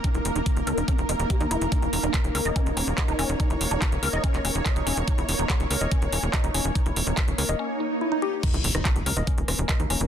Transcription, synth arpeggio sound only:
\new Staff \with { instrumentName = "Synth arpeggio sound" } { \time 4/4 \tempo 4 = 143 ees'16 fes'16 r16 ees'16 r8 bes'16 ees'16 des'16 r16 ees''16 r16 g'16 ees'16 fes'16 r16 | ees'16 fes'16 r16 ees'16 r8 bes'16 ees''16 des'16 r16 des'16 r16 ees''16 ees'16 des'16 r16 | ees'16 fes'16 r16 ees'16 r8 bes'16 ees''16 des'16 r16 des'16 r16 ees''16 ees'16 des'16 r16 | ees'16 fes'16 r16 ees'16 r8 bes'16 ees''16 des'16 r16 des'16 r16 ees''16 ees'16 des'16 r16 |
ees'16 fes'16 r16 ees'16 r8 bes'16 ees''16 des'16 r16 ees'16 r16 fes'16 ees'16 g'16 r16 | ees'16 fes'16 r16 ees'16 r8 bes'16 ees''16 des'16 r16 des'16 r16 ees''16 ees'16 des'16 r16 | }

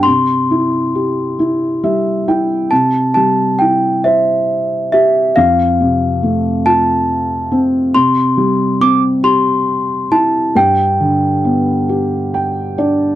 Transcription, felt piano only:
\new Staff \with { instrumentName = "Felt piano" } { \time 6/8 \key c \major \tempo 4. = 45 << { r2 e''8 g''8 | r2. | r2. | r2. |
r2 g''8 d''8 | } \\ { c8 e'8 g'8 e'8 g8 e'8 | c8 g8 e'8 c''4 g'8 | f,8 c8 a8 f'4 c'8 | c8 g8 c'8 g'4 e'8 |
g,8 d8 b8 g'4 d'8 | } >> }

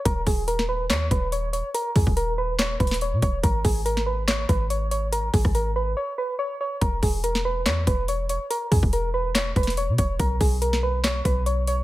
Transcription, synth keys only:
\new Staff \with { instrumentName = "Synth keys" } { \time 4/4 \key fes \lydian \tempo 4 = 142 bes'8 aes'8 bes'8 ces''8 des''8 ces''8 des''8 des''8 | bes'8 aes'8 bes'8 ces''8 des''8 ces''8 des''8 des''8 | bes'8 aes'8 bes'8 ces''8 des''8 ces''8 des''8 des''8 | bes'8 aes'8 bes'8 ces''8 des''8 ces''8 des''8 des''8 |
bes'8 aes'8 bes'8 b'8 des''8 b'8 des''8 des''8 | bes'8 aes'8 bes'8 b'8 des''8 b'8 des''8 des''8 | bes'8 aes'8 bes'8 b'8 cis''8 b'8 cis''8 cis''8 | }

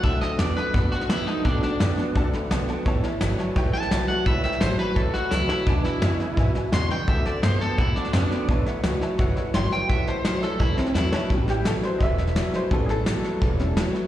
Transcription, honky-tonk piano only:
<<
  \new Staff \with { instrumentName = "Honky-tonk piano" } { \time 4/4 \key a \mixolydian \tempo 4 = 170 <d'' fis'' a''>8 <d'' fis'' a''>8 <d'' fis'' a''>8 <d'' fis'' a''>8 <d'' fis'' b''>8 <d'' fis'' a''>8 <d'' fis'' a''>8 <d'' fis'' a''>8 | <d'' fis'' a''>8 <d'' fis'' a''>8 <d'' fis'' a''>8 <d'' fis'' a''>8 <d'' fis'' a''>8 <d'' fis'' b''>8 <d'' fis'' a''>8 <d'' fis'' a''>8 | <cis'' e'' a''>8 <cis'' e'' a''>8 <cis'' e'' a''>8 <cis'' e'' a''>8 <cis'' e'' g''>8 <cis'' e'' fis''>8 <cis'' e'' g''>8 <cis'' e'' a''>8 | <cis'' e'' b''>8 <cis'' e'' g''>8 <cis'' e'' a''>8 <cis'' e'' a''>8 <cis'' e'' a''>8 <cis'' e'' fis''>8 <cis'' e'' a''>8 <cis'' e'' a''>8 |
<b' e'' gis''>8 <b' e'' b''>8 <b' e'' gis''>8 <b' e'' gis''>8 <b' e'' gis''>8 <b' e'' gis''>8 <b' e'' fis''>8 <b' e'' gis''>8 | <d'' fis'' a''>8 <d'' fis'' a''>8 <d'' fis'' a''>8 <d'' fis'' a''>8 <d'' fis'' a''>8 <d'' fis'' a''>8 <d'' fis'' a''>8 <d'' fis'' b''>8 | <cis'' e'' a''>8 <cis'' e'' fis''>8 <cis'' e'' fis''>8 <cis'' e'' a''>8 <cis'' e'' fis''>8 <cis'' e'' fis''>8 <cis'' e'' g''>8 <cis'' e'' a''>8 | <cis'' e'' fis''>8 <cis'' e'' a''>8 <cis'' e'' a''>8 <cis'' e'' a''>8 <cis'' e'' a''>8 <cis'' e'' a''>8 <cis'' e'' a''>8 <cis'' e'' a''>8 |
r8 g'8 a'8 c''8 <dis'' e''>4. c''8 | a'8 <gis' a'>2. r8 | }
  \new Staff \with { instrumentName = "Honky-tonk piano" } { \time 4/4 \key a \mixolydian r1 | r1 | r1 | r1 |
r1 | r1 | r1 | r1 |
<g b cis'>1 | <g b cis'>8 r2 <g b cis'>8 r4 | }
>>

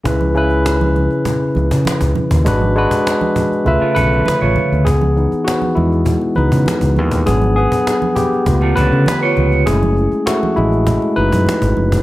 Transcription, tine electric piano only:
\new Staff \with { instrumentName = "Tine electric piano" } { \time 4/4 \key cis \minor \tempo 4 = 100 << { r1 | r2 r8 <d b'>4. | <b gis'>4 <b fis'>8 <gis e'>4 b'4. | gis'8 <b gis'>4 <b g'>4 <d b'>4. |
<cis' gis'>4 <a fis'>8 <gis e'>4 <dis' b'>4. | } \\ { <cis cis' e' b'>8 <cis cis' e' b'>2 r4. | <gis d' fis' b'>8 <gis d' fis' b'>4. <cis a eis' b' e''>2 | r8 <e b dis'>4. r8 <e b dis'>8 r4 | <fis b d'>8 r4. <a b eis'>4. r8 |
<gis a e'>4. r8 <gis a e'>8 r4. | } >> }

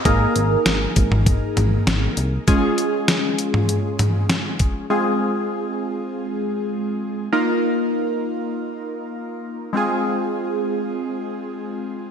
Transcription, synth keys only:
\new Staff \with { instrumentName = "Synth keys" } { \time 4/4 \key f \minor \tempo 4 = 99 <bes ees' aes' bes'>1 | <aes des' f' aes'>1 | <aes c' f' aes'>1 | <bes ees' f' bes'>1 |
<aes c' f' aes'>1 | }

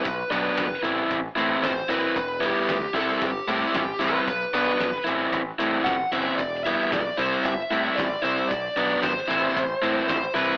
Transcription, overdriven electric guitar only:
\new Staff \with { instrumentName = "Overdriven electric guitar" } { \time 4/4 \key a \dorian \tempo 4 = 114 r8 <fis b d'>8 r8 <e c' e'>8 r8 <e c' e'>8 r8 <e c' e'>8 | r8 <g b e'>8 r8 <g c' e'>8 r8 <g c' e'>8 r8 <g c' e'>8 | r8 <fis b d'>8 r8 <e c' e'>8 r8 <e c' e'>8 r8 <e c' e'>8 | r8 <g b e'>8 r8 <g c' e'>8 r8 <g c' e'>8 r8 <g c' e'>8 |
r8 <fis b d'>8 r8 <e c' e'>8 r8 <e c' e'>8 r8 <e c' e'>8 | }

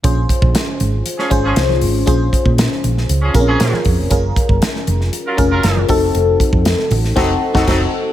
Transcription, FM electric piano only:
\new Staff \with { instrumentName = "FM electric piano" } { \time 4/4 \key bes \minor \tempo 4 = 118 <des' f' aes' c''>4. r4 <des' f' aes' c''>4 r8 | <des' f' aes' c''>4. r4 <c' des' f' aes' bes'>4 r8 | <des' f' aes' bes'>4. r4 <des' f' aes' bes'>4 <c' ees' ges' a'>8~ | <c' ees' ges' a'>4 r4 <c' ees' ges' a'>8 r16 <c' ees' ges' a'>16 <c' ees' ges' a'>8 r8 | }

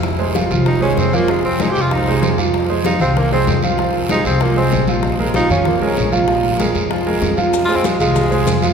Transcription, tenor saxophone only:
\new Staff \with { instrumentName = "Tenor saxophone" } { \time 4/4 \key f \minor \tempo 4 = 192 r2 ees'8 des'8 c'8 bes8 | aes8 c'8 \tuplet 3/2 { ees'8 g'8 f'8 } ees'4. r8 | r4 ees'8 c'8 bes8 c'4 r8 | r4 ees'8 c'8 bes8 c'4 r8 |
r4 ees'8 des'8 bes8 des'4 r8 | r1 | \tuplet 3/2 { r8 f'8 c'8 } aes8 aes2~ aes8 | }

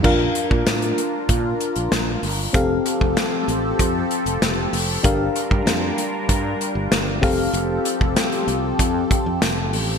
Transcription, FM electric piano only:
\new Staff \with { instrumentName = "FM electric piano" } { \time 4/4 \key f \major \tempo 4 = 96 <d' f' bes' f''>1 | <c' g' a' f''>1 | <d' g' bes' f''>2.~ <d' g' bes' f''>8 <c' g' a' f''>8~ | <c' g' a' f''>2.~ <c' g' a' f''>8 r8 | }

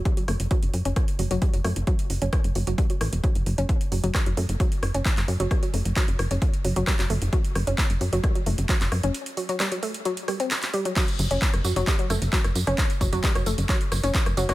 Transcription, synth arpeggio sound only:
\new Staff \with { instrumentName = "Synth arpeggio sound" } { \clef bass \time 4/4 \tempo 4 = 132 g16 fis16 a16 r16 fis16 r8 cis'16 r8 fis16 fis16 g16 fis16 a16 r16 | fis16 r8 cis'16 r8 fis16 fis16 g16 fis16 a16 r16 fis16 r8 cis'16 | r8 fis16 fis16 g16 fis16 a16 r16 fis16 r8 cis'16 r8 fis16 fis16 | g16 fis16 a16 r16 fis16 r8 cis'16 r8 fis16 fis16 g16 fis16 a16 r16 |
fis16 r8 cis'16 r8 fis16 fis16 g16 fis16 a16 r16 fis16 r8 cis'16 | r8 fis16 fis16 g16 fis16 a16 r16 fis16 r16 g16 bis16 r8 g16 fis16 | fis16 r8 cis'16 r8 fis16 fis16 g16 fis16 a16 r16 fis16 r8 cis'16 | r8 fis16 fis16 g16 fis16 a16 r16 fis16 r8 cis'16 r8 fis16 fis16 | }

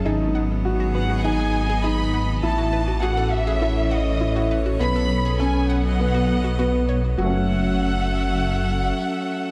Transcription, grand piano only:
\new Staff \with { instrumentName = "Grand piano" } { \time 4/4 \key fis \dorian \tempo 4 = 101 dis'4 fis'4 dis'4 dis'4 | e'4 fis'4 e'4 e'4 | b4 cis'4 b4 b4 | <fis a cis' fis'>1 | }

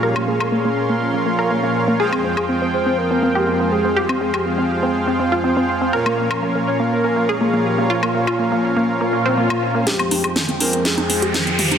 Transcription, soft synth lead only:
\new Staff \with { instrumentName = "Soft synth lead" } { \time 4/4 \key f \minor \tempo 4 = 122 g'8 aes'2 r4. | aes'4 r8 c''8 bes'4. aes'8 | g'8 aes'2 r4. | bes'4 r8 des''8 bes'8. aes'8. g'8 |
f'2.~ f'8 r8 | g'4 r8 bes'8 aes'4. g'8 | }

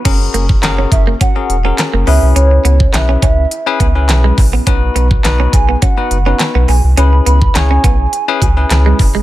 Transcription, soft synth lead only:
\new Staff \with { instrumentName = "Soft synth lead" } { \time 4/4 \key cis \dorian \tempo 4 = 104 r4. e''8 fis''4 r8 e''8 | cis''8 cis''8 e''2~ e''8 r8 | r4. gis''8 fis''4 r8 gis''8 | b''8 b''8 gis''2~ gis''8 r8 | }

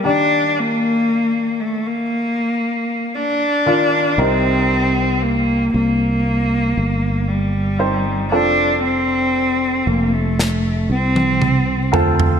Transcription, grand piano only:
<<
  \new Staff \with { instrumentName = "Grand piano" } { \time 4/4 \key ees \lydian \tempo 4 = 58 <bes d' g'>2 r4. <ees d' f'>8 | <c' ees' bes'>2 r4. <c' ees' c''>8 | <c' f' a'>2 r4. <c' f' a'>8 | }
  \new Staff \with { instrumentName = "Grand piano" } { \clef bass \time 4/4 \key ees \lydian ees4. r2 r8 | c4. r2 r8 | r1 | }
>>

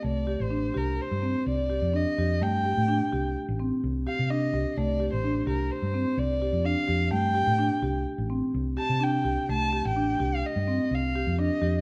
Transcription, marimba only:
\new Staff \with { instrumentName = "Marimba" } { \time 5/4 \key c \dorian \tempo 4 = 127 a8 g'8 d'8 g'4 c'4 g'8 d'8 g'8 | a8 g'8 d'8 g'4 c'4 g'8 d'8 g'8 | a8 g'8 d'8 g'4 c'4 g'8 d'8 g'8 | a8 g'8 d'8 g'4 c'4 g'8 d'8 g'8 |
a8 g'8 d'8 g'4 c'4 g'8 d'8 g'8 | }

